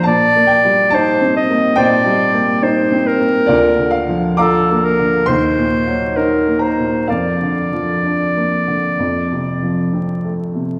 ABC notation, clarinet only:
X:1
M:4/4
L:1/8
Q:1/4=67
K:Bb
V:1 name="Clarinet"
d2 c e d2 c B- | B z A B c2 B c | d6- d z |]